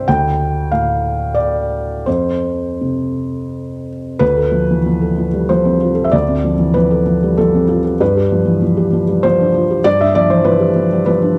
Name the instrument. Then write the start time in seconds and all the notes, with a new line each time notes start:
felt piano
0.08 D2 G5
0.71 A2 F5
1.34 D5
2.06 F2 C5
2.81 C3
4.19 D2 B4
4.37 A4
4.52 F3
4.71 E3
4.86 F3
5.01 A4
5.18 F3
5.34 G3
5.49 F3 C5
5.65 C4
5.81 F4
5.95 A4
6.04 E5
6.12 D2 D5
6.28 C4
6.44 F3
6.59 E3
6.74 F3 B4
6.91 A4
7.07 F3
7.23 G3
7.37 F3 A4
7.54 C4
7.68 F4
7.84 A4
8.00 G2 B4
8.17 G4
8.32 F3
8.45 E3
8.62 F3
8.77 G4
8.93 F3
9.08 G3
9.23 F3 C5
9.40 D4
9.54 F4
9.70 G4
9.84 G2 D5
10.01 D4 E5
10.15 F3 D5
10.30 E3 C5
10.45 F3 B4
10.60 G4
10.76 F3
10.92 G3
11.06 F3 B4
11.22 D4